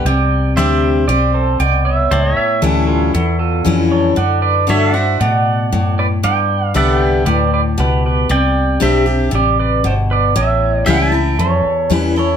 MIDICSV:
0, 0, Header, 1, 6, 480
1, 0, Start_track
1, 0, Key_signature, 0, "major"
1, 0, Tempo, 515021
1, 46, Time_signature, 4, 2, 24, 8
1, 11527, End_track
2, 0, Start_track
2, 0, Title_t, "Pedal steel guitar"
2, 0, Program_c, 0, 26
2, 534, Note_on_c, 0, 72, 67
2, 543, Note_on_c, 0, 74, 66
2, 1956, Note_off_c, 0, 72, 0
2, 1961, Note_off_c, 0, 74, 0
2, 1970, Note_on_c, 0, 72, 69
2, 1983, Note_on_c, 0, 74, 71
2, 2156, Note_off_c, 0, 72, 0
2, 2156, Note_on_c, 0, 73, 69
2, 2216, Note_off_c, 0, 74, 0
2, 2216, Note_on_c, 0, 76, 71
2, 3870, Note_off_c, 0, 73, 0
2, 3877, Note_off_c, 0, 76, 0
2, 4379, Note_on_c, 0, 73, 67
2, 4389, Note_on_c, 0, 76, 68
2, 4566, Note_off_c, 0, 73, 0
2, 4566, Note_on_c, 0, 74, 67
2, 4622, Note_off_c, 0, 76, 0
2, 4622, Note_on_c, 0, 78, 68
2, 5800, Note_off_c, 0, 74, 0
2, 5805, Note_off_c, 0, 78, 0
2, 6307, Note_on_c, 0, 74, 64
2, 6317, Note_on_c, 0, 78, 71
2, 6503, Note_off_c, 0, 78, 0
2, 6503, Note_on_c, 0, 79, 71
2, 7724, Note_off_c, 0, 74, 0
2, 7729, Note_off_c, 0, 79, 0
2, 7743, Note_on_c, 0, 74, 65
2, 7748, Note_on_c, 0, 79, 70
2, 9637, Note_off_c, 0, 74, 0
2, 9640, Note_off_c, 0, 79, 0
2, 10124, Note_on_c, 0, 76, 74
2, 10131, Note_on_c, 0, 79, 71
2, 10364, Note_off_c, 0, 79, 0
2, 10364, Note_on_c, 0, 81, 71
2, 11527, Note_off_c, 0, 76, 0
2, 11527, Note_off_c, 0, 81, 0
2, 11527, End_track
3, 0, Start_track
3, 0, Title_t, "Pedal steel guitar"
3, 0, Program_c, 1, 26
3, 55, Note_on_c, 1, 79, 104
3, 63, Note_on_c, 1, 74, 75
3, 502, Note_off_c, 1, 74, 0
3, 528, Note_on_c, 1, 72, 68
3, 529, Note_on_c, 1, 76, 93
3, 545, Note_off_c, 1, 79, 0
3, 973, Note_off_c, 1, 76, 0
3, 974, Note_off_c, 1, 72, 0
3, 1003, Note_on_c, 1, 74, 99
3, 1009, Note_on_c, 1, 67, 71
3, 1231, Note_off_c, 1, 67, 0
3, 1250, Note_on_c, 1, 69, 68
3, 1252, Note_off_c, 1, 74, 0
3, 1252, Note_on_c, 1, 72, 79
3, 1472, Note_off_c, 1, 69, 0
3, 1488, Note_on_c, 1, 74, 72
3, 1492, Note_on_c, 1, 79, 95
3, 1495, Note_off_c, 1, 72, 0
3, 1711, Note_off_c, 1, 74, 0
3, 1725, Note_on_c, 1, 76, 94
3, 1735, Note_off_c, 1, 79, 0
3, 1735, Note_on_c, 1, 73, 70
3, 2178, Note_off_c, 1, 73, 0
3, 2193, Note_off_c, 1, 76, 0
3, 2205, Note_on_c, 1, 73, 72
3, 2206, Note_on_c, 1, 76, 99
3, 2430, Note_off_c, 1, 73, 0
3, 2445, Note_on_c, 1, 69, 85
3, 2452, Note_on_c, 1, 64, 66
3, 2453, Note_off_c, 1, 76, 0
3, 2665, Note_off_c, 1, 69, 0
3, 2673, Note_off_c, 1, 64, 0
3, 2676, Note_on_c, 1, 69, 84
3, 2687, Note_on_c, 1, 65, 69
3, 2910, Note_off_c, 1, 65, 0
3, 2915, Note_off_c, 1, 69, 0
3, 2926, Note_on_c, 1, 69, 93
3, 2934, Note_on_c, 1, 64, 68
3, 3151, Note_off_c, 1, 69, 0
3, 3154, Note_off_c, 1, 64, 0
3, 3163, Note_on_c, 1, 69, 83
3, 3167, Note_on_c, 1, 65, 62
3, 3614, Note_off_c, 1, 65, 0
3, 3647, Note_off_c, 1, 69, 0
3, 3649, Note_on_c, 1, 73, 81
3, 3658, Note_on_c, 1, 69, 68
3, 3876, Note_off_c, 1, 69, 0
3, 3888, Note_on_c, 1, 78, 102
3, 3894, Note_on_c, 1, 74, 75
3, 3896, Note_off_c, 1, 73, 0
3, 4107, Note_off_c, 1, 74, 0
3, 4120, Note_on_c, 1, 71, 73
3, 4120, Note_on_c, 1, 74, 91
3, 4135, Note_off_c, 1, 78, 0
3, 4346, Note_off_c, 1, 74, 0
3, 4348, Note_off_c, 1, 71, 0
3, 4370, Note_on_c, 1, 69, 71
3, 4376, Note_on_c, 1, 76, 88
3, 4593, Note_off_c, 1, 69, 0
3, 4598, Note_off_c, 1, 76, 0
3, 4608, Note_on_c, 1, 72, 69
3, 4611, Note_on_c, 1, 76, 86
3, 4831, Note_off_c, 1, 72, 0
3, 4847, Note_on_c, 1, 78, 96
3, 4852, Note_off_c, 1, 76, 0
3, 4855, Note_on_c, 1, 74, 77
3, 5535, Note_off_c, 1, 74, 0
3, 5583, Note_on_c, 1, 74, 84
3, 5587, Note_on_c, 1, 71, 64
3, 5590, Note_off_c, 1, 78, 0
3, 5646, Note_off_c, 1, 74, 0
3, 5649, Note_off_c, 1, 71, 0
3, 5816, Note_on_c, 1, 74, 76
3, 5818, Note_on_c, 1, 79, 99
3, 6210, Note_off_c, 1, 79, 0
3, 6210, Note_on_c, 1, 77, 99
3, 6260, Note_off_c, 1, 74, 0
3, 6297, Note_on_c, 1, 71, 68
3, 6299, Note_on_c, 1, 76, 88
3, 6306, Note_off_c, 1, 77, 0
3, 6740, Note_off_c, 1, 71, 0
3, 6765, Note_on_c, 1, 71, 72
3, 6769, Note_off_c, 1, 76, 0
3, 6772, Note_on_c, 1, 74, 89
3, 6991, Note_off_c, 1, 71, 0
3, 7012, Note_off_c, 1, 74, 0
3, 7023, Note_on_c, 1, 71, 62
3, 7026, Note_on_c, 1, 74, 81
3, 7086, Note_off_c, 1, 71, 0
3, 7087, Note_off_c, 1, 74, 0
3, 7268, Note_on_c, 1, 67, 64
3, 7272, Note_on_c, 1, 71, 83
3, 7483, Note_off_c, 1, 67, 0
3, 7484, Note_off_c, 1, 71, 0
3, 7511, Note_on_c, 1, 67, 61
3, 7516, Note_on_c, 1, 71, 77
3, 7725, Note_off_c, 1, 67, 0
3, 7749, Note_off_c, 1, 71, 0
3, 7752, Note_on_c, 1, 74, 74
3, 7753, Note_on_c, 1, 79, 93
3, 8188, Note_off_c, 1, 74, 0
3, 8222, Note_on_c, 1, 72, 71
3, 8229, Note_on_c, 1, 76, 91
3, 8235, Note_off_c, 1, 79, 0
3, 8663, Note_off_c, 1, 72, 0
3, 8711, Note_on_c, 1, 67, 74
3, 8713, Note_off_c, 1, 76, 0
3, 8717, Note_on_c, 1, 74, 92
3, 8925, Note_off_c, 1, 67, 0
3, 8936, Note_off_c, 1, 74, 0
3, 8943, Note_on_c, 1, 71, 66
3, 8949, Note_on_c, 1, 74, 77
3, 9160, Note_off_c, 1, 71, 0
3, 9186, Note_off_c, 1, 74, 0
3, 9189, Note_on_c, 1, 67, 67
3, 9195, Note_on_c, 1, 72, 84
3, 9251, Note_off_c, 1, 67, 0
3, 9257, Note_off_c, 1, 72, 0
3, 9424, Note_on_c, 1, 71, 67
3, 9437, Note_on_c, 1, 74, 79
3, 9640, Note_off_c, 1, 71, 0
3, 9660, Note_on_c, 1, 73, 75
3, 9663, Note_off_c, 1, 74, 0
3, 9667, Note_on_c, 1, 76, 92
3, 10101, Note_off_c, 1, 73, 0
3, 10132, Note_off_c, 1, 76, 0
3, 10143, Note_on_c, 1, 76, 75
3, 10157, Note_on_c, 1, 79, 90
3, 10583, Note_off_c, 1, 76, 0
3, 10614, Note_on_c, 1, 69, 68
3, 10629, Note_on_c, 1, 73, 92
3, 10637, Note_off_c, 1, 79, 0
3, 11160, Note_off_c, 1, 73, 0
3, 11160, Note_on_c, 1, 71, 92
3, 11294, Note_off_c, 1, 69, 0
3, 11348, Note_on_c, 1, 69, 61
3, 11353, Note_off_c, 1, 71, 0
3, 11364, Note_on_c, 1, 73, 80
3, 11527, Note_off_c, 1, 69, 0
3, 11527, Note_off_c, 1, 73, 0
3, 11527, End_track
4, 0, Start_track
4, 0, Title_t, "Steel-string acoustic guitar"
4, 0, Program_c, 2, 25
4, 56, Note_on_c, 2, 48, 86
4, 531, Note_on_c, 2, 55, 80
4, 538, Note_on_c, 2, 60, 83
4, 548, Note_on_c, 2, 62, 81
4, 552, Note_on_c, 2, 67, 84
4, 963, Note_off_c, 2, 48, 0
4, 985, Note_off_c, 2, 55, 0
4, 988, Note_off_c, 2, 60, 0
4, 993, Note_off_c, 2, 62, 0
4, 995, Note_off_c, 2, 67, 0
4, 1013, Note_on_c, 2, 60, 84
4, 1466, Note_off_c, 2, 60, 0
4, 1489, Note_on_c, 2, 47, 82
4, 1944, Note_off_c, 2, 47, 0
4, 1971, Note_on_c, 2, 45, 86
4, 2440, Note_on_c, 2, 52, 79
4, 2441, Note_on_c, 2, 55, 84
4, 2455, Note_on_c, 2, 61, 84
4, 2456, Note_on_c, 2, 64, 91
4, 2881, Note_off_c, 2, 45, 0
4, 2900, Note_off_c, 2, 52, 0
4, 2900, Note_off_c, 2, 55, 0
4, 2907, Note_off_c, 2, 61, 0
4, 2908, Note_off_c, 2, 64, 0
4, 2931, Note_on_c, 2, 40, 85
4, 3398, Note_on_c, 2, 52, 76
4, 3407, Note_on_c, 2, 55, 86
4, 3412, Note_on_c, 2, 61, 87
4, 3421, Note_on_c, 2, 64, 89
4, 3842, Note_off_c, 2, 40, 0
4, 3859, Note_off_c, 2, 52, 0
4, 3864, Note_off_c, 2, 55, 0
4, 3866, Note_off_c, 2, 61, 0
4, 3870, Note_off_c, 2, 64, 0
4, 3878, Note_on_c, 2, 50, 87
4, 4339, Note_off_c, 2, 50, 0
4, 4351, Note_on_c, 2, 50, 75
4, 4357, Note_on_c, 2, 57, 81
4, 4367, Note_on_c, 2, 62, 83
4, 4372, Note_on_c, 2, 66, 88
4, 4589, Note_off_c, 2, 66, 0
4, 4590, Note_off_c, 2, 50, 0
4, 4593, Note_off_c, 2, 57, 0
4, 4598, Note_off_c, 2, 62, 0
4, 4601, Note_on_c, 2, 66, 59
4, 4620, Note_on_c, 2, 62, 47
4, 4835, Note_off_c, 2, 66, 0
4, 4845, Note_off_c, 2, 62, 0
4, 4852, Note_on_c, 2, 47, 82
4, 5307, Note_off_c, 2, 47, 0
4, 5335, Note_on_c, 2, 45, 79
4, 5788, Note_off_c, 2, 45, 0
4, 5810, Note_on_c, 2, 43, 85
4, 6284, Note_on_c, 2, 50, 78
4, 6288, Note_on_c, 2, 55, 81
4, 6298, Note_on_c, 2, 67, 92
4, 6302, Note_on_c, 2, 59, 77
4, 6722, Note_off_c, 2, 43, 0
4, 6743, Note_off_c, 2, 50, 0
4, 6745, Note_off_c, 2, 55, 0
4, 6750, Note_off_c, 2, 67, 0
4, 6752, Note_off_c, 2, 59, 0
4, 6768, Note_on_c, 2, 45, 83
4, 7225, Note_off_c, 2, 45, 0
4, 7247, Note_on_c, 2, 47, 79
4, 7705, Note_off_c, 2, 47, 0
4, 7730, Note_on_c, 2, 48, 87
4, 8201, Note_on_c, 2, 55, 85
4, 8209, Note_on_c, 2, 60, 85
4, 8212, Note_on_c, 2, 62, 85
4, 8222, Note_on_c, 2, 67, 98
4, 8432, Note_off_c, 2, 67, 0
4, 8436, Note_off_c, 2, 55, 0
4, 8440, Note_off_c, 2, 60, 0
4, 8442, Note_off_c, 2, 62, 0
4, 8443, Note_on_c, 2, 67, 62
4, 8459, Note_on_c, 2, 62, 46
4, 8642, Note_off_c, 2, 48, 0
4, 8677, Note_off_c, 2, 67, 0
4, 8678, Note_on_c, 2, 48, 82
4, 8685, Note_off_c, 2, 62, 0
4, 9140, Note_off_c, 2, 48, 0
4, 9171, Note_on_c, 2, 47, 81
4, 9626, Note_off_c, 2, 47, 0
4, 9652, Note_on_c, 2, 45, 93
4, 10120, Note_on_c, 2, 52, 93
4, 10129, Note_on_c, 2, 55, 87
4, 10134, Note_on_c, 2, 61, 94
4, 10141, Note_on_c, 2, 64, 93
4, 10350, Note_off_c, 2, 64, 0
4, 10355, Note_off_c, 2, 52, 0
4, 10359, Note_off_c, 2, 55, 0
4, 10362, Note_off_c, 2, 61, 0
4, 10362, Note_on_c, 2, 64, 63
4, 10384, Note_on_c, 2, 61, 52
4, 10562, Note_off_c, 2, 45, 0
4, 10596, Note_off_c, 2, 64, 0
4, 10607, Note_off_c, 2, 61, 0
4, 10618, Note_on_c, 2, 40, 82
4, 11087, Note_on_c, 2, 52, 73
4, 11094, Note_on_c, 2, 55, 80
4, 11100, Note_on_c, 2, 61, 87
4, 11105, Note_on_c, 2, 64, 101
4, 11318, Note_off_c, 2, 52, 0
4, 11322, Note_off_c, 2, 55, 0
4, 11322, Note_off_c, 2, 64, 0
4, 11325, Note_off_c, 2, 61, 0
4, 11333, Note_on_c, 2, 64, 58
4, 11356, Note_on_c, 2, 61, 47
4, 11525, Note_off_c, 2, 40, 0
4, 11527, Note_off_c, 2, 61, 0
4, 11527, Note_off_c, 2, 64, 0
4, 11527, End_track
5, 0, Start_track
5, 0, Title_t, "Fingered electric bass"
5, 0, Program_c, 3, 33
5, 47, Note_on_c, 3, 36, 87
5, 512, Note_off_c, 3, 36, 0
5, 525, Note_on_c, 3, 38, 88
5, 991, Note_off_c, 3, 38, 0
5, 1006, Note_on_c, 3, 35, 86
5, 1472, Note_off_c, 3, 35, 0
5, 1488, Note_on_c, 3, 36, 88
5, 1953, Note_off_c, 3, 36, 0
5, 1968, Note_on_c, 3, 37, 86
5, 2191, Note_off_c, 3, 37, 0
5, 2445, Note_on_c, 3, 38, 85
5, 2912, Note_off_c, 3, 38, 0
5, 2932, Note_on_c, 3, 40, 82
5, 3396, Note_off_c, 3, 40, 0
5, 3409, Note_on_c, 3, 41, 87
5, 3874, Note_off_c, 3, 41, 0
5, 3890, Note_on_c, 3, 42, 88
5, 4355, Note_off_c, 3, 42, 0
5, 4369, Note_on_c, 3, 43, 85
5, 4834, Note_off_c, 3, 43, 0
5, 4852, Note_on_c, 3, 45, 87
5, 5316, Note_off_c, 3, 45, 0
5, 5337, Note_on_c, 3, 42, 86
5, 5799, Note_off_c, 3, 42, 0
5, 5815, Note_on_c, 3, 43, 82
5, 6278, Note_off_c, 3, 43, 0
5, 6290, Note_on_c, 3, 36, 85
5, 6755, Note_off_c, 3, 36, 0
5, 6765, Note_on_c, 3, 38, 85
5, 7233, Note_off_c, 3, 38, 0
5, 7252, Note_on_c, 3, 37, 84
5, 7717, Note_off_c, 3, 37, 0
5, 7734, Note_on_c, 3, 36, 90
5, 8198, Note_off_c, 3, 36, 0
5, 8220, Note_on_c, 3, 35, 92
5, 8680, Note_off_c, 3, 35, 0
5, 8692, Note_on_c, 3, 33, 83
5, 9157, Note_off_c, 3, 33, 0
5, 9174, Note_on_c, 3, 31, 92
5, 9638, Note_off_c, 3, 31, 0
5, 9655, Note_on_c, 3, 33, 87
5, 10118, Note_off_c, 3, 33, 0
5, 10135, Note_on_c, 3, 37, 92
5, 10598, Note_off_c, 3, 37, 0
5, 10614, Note_on_c, 3, 41, 83
5, 10835, Note_off_c, 3, 41, 0
5, 11091, Note_on_c, 3, 40, 91
5, 11527, Note_off_c, 3, 40, 0
5, 11527, End_track
6, 0, Start_track
6, 0, Title_t, "Muted fingered electric bass strokes"
6, 2214, Note_on_c, 9, 29, 36
6, 2307, Note_off_c, 9, 29, 0
6, 10857, Note_on_c, 9, 29, 41
6, 10951, Note_off_c, 9, 29, 0
6, 11527, End_track
0, 0, End_of_file